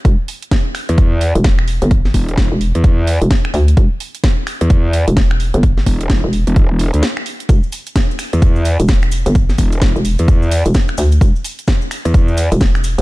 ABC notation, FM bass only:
X:1
M:4/4
L:1/16
Q:"Swing 16ths" 1/4=129
K:Em
V:1 name="FM bass" clef=bass
E,,, z8 z2 E,,,4 G,,,- | G,,,2 z3 E,,,2 z4 E,,, z2 D,,2 | E,,, z8 z2 E,,,4 G,,,- | G,,,2 z3 E,,,2 z8 z |
E,,, z8 z2 E,,,4 G,,,- | G,,,2 z3 E,,,2 z4 E,,, z2 D,,2 | E,,, z8 z2 E,,,4 G,,, |]